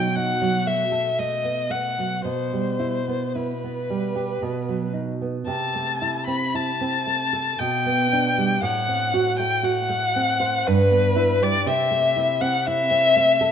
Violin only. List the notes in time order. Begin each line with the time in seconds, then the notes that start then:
Already playing: G5
0.15 F#5
0.66 E5
1.18 D#5
1.71 F#5
2.26 C5
3.36 B4
5.48 A5
6.27 B5
6.55 A5
7.59 G5
8.63 F#5
9.39 G5
9.64 F#5
10.67 B4
11.43 D5
11.67 E5
12.41 F#5
12.67 E5